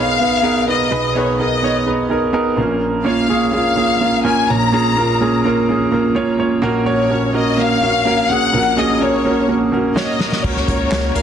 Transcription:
Already playing: B1 B2 B3 D#4 G#4 A#4 B4 C#5
0.00 F5
0.20 B3 D#4 G#4 B4
0.42 B3 D#4 G#4 A#4
0.66 B3 D#4 G#4 B4
0.71 D#5
0.91 B1 B2 B3 D#4 G#4 B4
1.15 B3 D#4 G#4 B4 C#5
1.39 B3 D#4 G#4 A#4 D#5
1.62 B3 D#4 G#4 C#5
1.86 B3 D#4 G#4 B4
2.09 B3 D#4 G#4 A#4
2.33 B3 D#4 G#4 A#4
2.56 A#1 A#2 A#3 C#4 F4 A#4
3.04 A#3 C#4 F4 C#5 F5
3.28 A#3 C#4 F4 G#4
3.52 A#3 C#4 F4 G#4 F5
3.76 A#3 C#4 F4 G#4
4.00 A#3 C#4 F4 A#4
4.24 A#3 C#4 F4 A#4 G#5
4.49 A#1 A#2 A#3 C#4 F4 C#5 A#5
4.72 A#3 C#4 F4 G#4
4.96 A#3 C#4 F4 A#4
5.21 A#3 C#4 F4 G#4
5.45 A#3 C#4 F4 A#4
5.69 A#3 C#4 F4 G#4
5.91 A#3 C#4 F4 A#4
6.15 A#3 C#4 F4 C#5
6.39 A#3 C#4 F4 C#5
6.62 A#1 A#2 A#3 C#4 F#4 A#4
6.85 A#3 C#4 F#4 C#5
6.90 C#5
7.10 A#3 C#4 F#4 A#4
7.33 A#3 C#4 F#4 A#4 D#5
7.57 A#3 C#4 F#4 A#4 F5
7.82 A#3 C#4 F#4 A#4
8.05 A#3 C#4 F#4 A#4
8.30 A#3 C#4 F#4 G#4 F#5
8.53 A#1 A#2 A#3 C#4 F#4 A#4
8.76 A#3 C#4 F#4 G#4 D#5
9.00 A#3 C#4 F#4 A#4 C#5
9.25 A#3 C#4 F#4 A#4
9.48 A#3 C#4 F#4 A#4
9.72 A#3 C#4 F#4 A#4
9.96 A#3 C#4 F#4 C#5 D#5, snare
10.20 A#3 C#4 F#4 A#4, snare
10.32 snare
10.43 C#2 C#3 A#3 C#4 F#4 A#4 C#5, kick, crash
10.56 snare
10.68 C#2 A#3 C#4 F#4 A#4, kick, closed hi-hat
10.91 C#2 A#3 C#4 F#4 C#5, snare, clap, closed hi-hat
11.14 C#2 A#3 C#4 F#4 A#4 F5, closed hi-hat

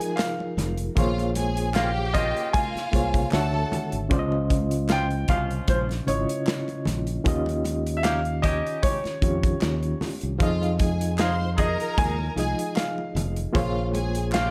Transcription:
Already playing: F3 D#4 F4 G#4 A#4 G#5
0.01 closed hi-hat
0.16 F5, snare, clap, closed hi-hat, muted conga
0.40 muted conga
0.57 F1, snare, closed hi-hat, high conga, low conga
0.77 closed hi-hat
0.96 A#1 A#3 F4 G#4 C5 C#5 F5, kick, closed hi-hat, low conga
1.18 closed hi-hat, muted conga
1.35 G#4 G#5, closed hi-hat, high conga
1.57 closed hi-hat
1.74 A#3 C#4 F4 G4 F5 G5, snare, clap, closed hi-hat, muted conga
1.98 muted conga
2.14 A#3 C#4 F4 D#5, kick, closed hi-hat, low conga
2.37 closed hi-hat
2.53 F4 F5 G#5, kick, closed hi-hat, muted conga, high conga
2.75 muted fingered electric bass stroke, snare, closed hi-hat, muted conga
2.92 C2 A#3 F4 G#4 C5 C#5, kick, closed hi-hat, high conga
3.14 kick, closed hi-hat
3.31 D2 D3 D4 F#4 A4 C#5 E5 F#5 A5, snare, clap, closed hi-hat, muted conga
3.54 muted conga
3.72 closed hi-hat, high conga, low conga
3.92 G#1, closed hi-hat
4.09 C#2 C#3 C#4 F4 C5 D5, kick, closed hi-hat, muted conga, low conga
4.19 D#5
4.32 muted conga
4.50 kick, closed hi-hat, high conga
4.71 closed hi-hat
4.89 F3 C#4 F4 G5, snare, clap, closed hi-hat
5.11 closed hi-hat, muted conga
5.28 C2 F3 C#4 F4 F5, kick, closed hi-hat, low conga
5.51 closed hi-hat
5.68 A#1 C5, kick, closed hi-hat, muted conga, high conga
5.89 snare, closed hi-hat, muted conga
6.06 G#1 C#3 C#4 E4 C#5 D#5, closed hi-hat, high conga
6.14 F4
6.29 closed hi-hat
6.47 snare, clap, closed hi-hat, muted conga
6.68 closed hi-hat, muted conga
6.85 A#1, snare, closed hi-hat, high conga, low conga
7.07 closed hi-hat
7.24 D#2 D#3 C#4 F4 G4 D#5, kick, closed hi-hat, muted conga, low conga
7.46 closed hi-hat, muted conga
7.65 closed hi-hat, high conga
7.87 closed hi-hat
7.97 E5
8.03 C#4 D#4 G4 F5, snare, clap, closed hi-hat, muted conga
8.25 closed hi-hat
8.42 C#4 D#4 G4 D#5, kick, closed hi-hat, low conga
8.66 closed hi-hat
8.83 C#5, kick, closed hi-hat, high conga
9.04 muted fingered electric bass stroke, snare, closed hi-hat, muted conga
9.21 F2 D#3 C#4 F4 G4 C#5, kick, closed hi-hat, high conga
9.43 kick, closed hi-hat
9.61 D#2, snare, clap, closed hi-hat
9.83 closed hi-hat
10.01 snare, open hi-hat, high conga, low conga
10.21 C2, closed hi-hat
10.39 F2 F3 D#4 F4 G#4 F5, kick, closed hi-hat, low conga
10.43 D#5
10.62 closed hi-hat, muted conga
10.79 G#4 G#5, kick, closed hi-hat, high conga
11.01 closed hi-hat
11.18 D#4 F4 G#4 C5 F5 C6, snare, clap, closed hi-hat, muted conga
11.41 muted conga
11.57 D#4 F4 G#4 A#4 D#5 A#5, kick, closed hi-hat, low conga
11.80 closed hi-hat
11.98 D#2 G#5, kick, closed hi-hat, muted conga, high conga
12.19 muted conga
12.36 C2 F3 D#4 F4 G#4 D#5 G#5, closed hi-hat, high conga
12.59 closed hi-hat
12.76 F5, snare, clap, closed hi-hat
12.98 muted conga
13.15 F1, closed hi-hat, high conga, low conga
13.36 closed hi-hat
13.53 A#1 A#3 F4 G#4 C5 C#5 F5, kick, closed hi-hat, muted conga, low conga
13.94 G#4 G#5, closed hi-hat, high conga
14.15 closed hi-hat
14.32 A#3 C#4 F4 G4 F5 G5, snare, clap, closed hi-hat, muted conga

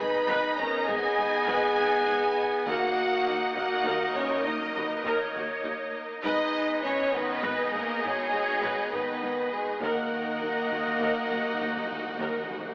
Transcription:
Already playing: B3 D#4 G#4 D#5
0.00 D#4 B4 D#5 B5
0.28 G#1 G#2 B4
0.58 G#1 G#2 C#4 G#4 A#4 A#5
0.88 G#1 G#2 B3 D#4 G#4 G#5
1.18 G#1 G#2 G#4
1.47 G#1 G#2 B4
1.77 G#1 G#2 G#4
2.07 G#1 G#2 D#4
2.66 D#2 D#3 A#3 D#4 F#4 A#4 D#5 F#5
3.26 D#2 D#4
3.55 D#2 A#3 F#4 A#4 F#5
3.85 D#2 A#4
4.15 D#2 E3 C#4 F#4 C#5
4.44 D#2 F#3 D#4 A#4 D#5
4.75 D#2 F#4 B4
5.04 D#2 A#4 C#5
5.34 D#2 F#4
5.64 D#2 D#4
6.23 G#1 G#2 G#3 B3 D#4 G#4 B4 D#5
6.83 G#1 G#2 E3 C#4 D#4 C#5
7.12 G#1 G#2 D#3 B3 G#4 B4 D#5
7.43 G#1 G#2 B4
7.72 G#1 G#2 C#3 A#3 G#4 A#4
8.01 G#1 G#2 B2 G#3 D#4 G#4 C#5
8.32 G#1 G#2 G#4
8.62 G#1 G#2 B4
8.91 G#1 G#2 D#3 B3 G#4 B4
9.21 G#1 G#2 D#4
9.50 B2 G#3 G#4
9.80 D#2 D#3 A#3 D#4 F#4 A#4 D#5 F#5
9.89 D#3
9.96 D#3
10.04 D#3
10.11 D#3
10.19 D#3
10.34 D#3
10.41 D#2 D#3 D#4
10.56 D#3
10.70 D#2 D#3 F#4
10.79 D#3
10.87 D#3
10.94 D#3
11.00 D#2 D#3 A#4
11.17 D#3
11.25 D#3
11.30 D#2 D#3 F#4
11.40 D#3
11.47 D#3
11.54 D#3
11.59 D#2 D#3 D#4
11.69 D#3
11.77 D#3
11.84 D#3
11.89 D#2 D#3 F#4
12.00 D#3
12.07 D#3
12.14 D#3
12.19 D#2 D#3 A#4
12.29 D#3
12.36 D#3
12.44 D#3
12.49 D#2 D#3 F#4
12.59 D#3
12.65 D#3

